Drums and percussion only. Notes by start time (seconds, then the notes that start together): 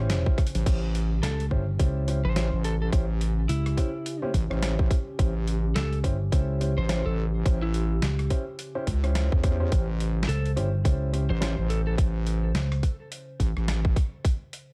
0.10 snare, closed hi-hat
0.26 kick
0.38 kick, cross-stick, closed hi-hat
0.47 closed hi-hat
0.55 closed hi-hat
0.66 kick, closed hi-hat, crash
0.95 closed hi-hat
1.23 snare, closed hi-hat
1.40 closed hi-hat
1.51 kick
1.79 kick, closed hi-hat
2.08 closed hi-hat
2.36 snare, closed hi-hat
2.64 closed hi-hat
2.93 kick, closed hi-hat
3.21 closed hi-hat
3.49 closed hi-hat
3.66 cross-stick, closed hi-hat
3.77 kick, closed hi-hat
4.06 closed hi-hat
4.34 kick, closed hi-hat
4.51 cross-stick
4.63 snare, closed hi-hat
4.79 kick
4.91 kick, closed hi-hat
5.19 kick, closed hi-hat
5.48 closed hi-hat
5.76 snare, closed hi-hat
5.93 closed hi-hat
6.04 kick, closed hi-hat
6.32 kick, closed hi-hat
6.61 closed hi-hat
6.89 snare, closed hi-hat
7.46 kick, closed hi-hat
7.74 closed hi-hat
8.02 snare, closed hi-hat
8.19 cross-stick, closed hi-hat
8.30 kick, closed hi-hat
8.59 closed hi-hat
8.87 kick, closed hi-hat
9.04 cross-stick, closed hi-hat
9.15 snare, closed hi-hat
9.32 kick
9.44 kick, cross-stick, closed hi-hat
9.72 kick, closed hi-hat
10.00 closed hi-hat
10.23 snare
10.29 closed hi-hat
10.46 closed hi-hat
10.57 closed hi-hat
10.85 kick, closed hi-hat
11.14 closed hi-hat
11.42 snare, closed hi-hat
11.70 closed hi-hat
11.98 kick, closed hi-hat
12.27 closed hi-hat
12.55 snare, closed hi-hat
12.72 cross-stick, closed hi-hat
12.83 kick, closed hi-hat
13.12 closed hi-hat
13.40 kick, closed hi-hat
13.57 cross-stick
13.68 snare, closed hi-hat
13.85 kick
13.96 kick, cross-stick, closed hi-hat
14.25 kick, closed hi-hat
14.53 closed hi-hat